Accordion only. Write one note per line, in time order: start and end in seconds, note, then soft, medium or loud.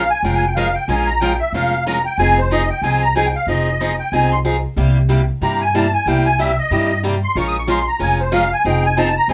0.10 0.23 G#5 loud
0.24 0.35 G5 medium
0.35 0.45 G#5 medium
0.46 0.56 G5 medium
0.56 0.75 F5 medium
0.74 0.88 G5 medium
0.88 1.07 G#5 medium
1.07 1.20 A#5 loud
1.20 1.39 G5 medium
1.39 1.53 E5 medium
1.54 1.84 F5 medium
1.86 2.05 A#5 medium
2.05 2.18 G5 medium
2.18 2.37 G#5 loud
2.38 2.51 C5 medium
2.51 2.70 D#5 medium
2.70 2.83 G5 medium
2.83 3.02 G#5 medium
3.02 3.15 A#5 loud
3.15 3.26 G#5 medium
3.26 3.36 G5 medium
3.36 3.47 F5 medium
3.48 3.96 D#5 medium
3.99 4.12 G5 medium
4.12 4.31 G#5 medium
4.31 4.39 C6 medium
5.42 5.61 A#5 medium
5.61 5.74 G#5 medium
5.75 5.93 A5 medium
5.94 6.06 G#5 medium
6.07 6.25 G5 medium
6.26 6.39 G#5 loud
6.40 6.58 E5 medium
6.59 7.01 D#5 medium
7.24 7.36 C6 medium
7.37 7.47 C#6 medium
7.47 7.58 D#6 loud
7.59 7.69 C#6 medium
7.69 7.87 C6 medium
7.87 8.00 A#5 medium
8.01 8.19 G#5 medium
8.20 8.33 C5 medium
8.33 8.52 F5 medium
8.53 8.65 G#5 medium
8.67 8.84 G5 medium
8.85 8.98 G#5 medium
8.98 9.16 A5 medium
9.17 9.30 A#5 loud
9.30 9.33 G#5 medium